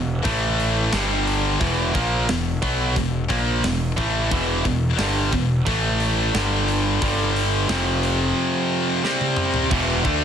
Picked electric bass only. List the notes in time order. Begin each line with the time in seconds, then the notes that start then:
Already playing: E1
0.25 A1
0.93 G1
1.61 E1
1.95 A#1
2.29 E1
2.62 B1
2.96 E1
3.30 A#1
3.64 E1
3.98 A1
4.32 E1
4.66 E1
4.99 G1
5.33 E1
5.66 A1
6.35 G1
7.02 G1
7.69 F1
9.71 E1
10.05 D2